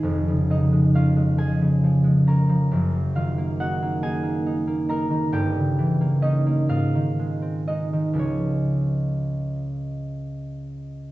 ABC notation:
X:1
M:6/8
L:1/16
Q:3/8=44
K:Db
V:1 name="Harp"
z2 [Ee]2 [Ff]2 [Aa]4 [Bb]2- | [Bb]2 [Ff]2 [Gg]2 [Aa]4 [Bb]2 | [=G=g]4 [Ee]2 [Ff]4 [Ee]2 | [Dd]12 |]
V:2 name="Harp" clef=bass
[F,,,F,,A,A] D, F, A, D A, F, D, F, A, D F, | [G,,,G,,] G, E, B, E B, E B, E B, E E, | [=G,,,=G,,] D, =E, B, D B, A,, _E, A, C A, E, | [D,,F,A,]12 |]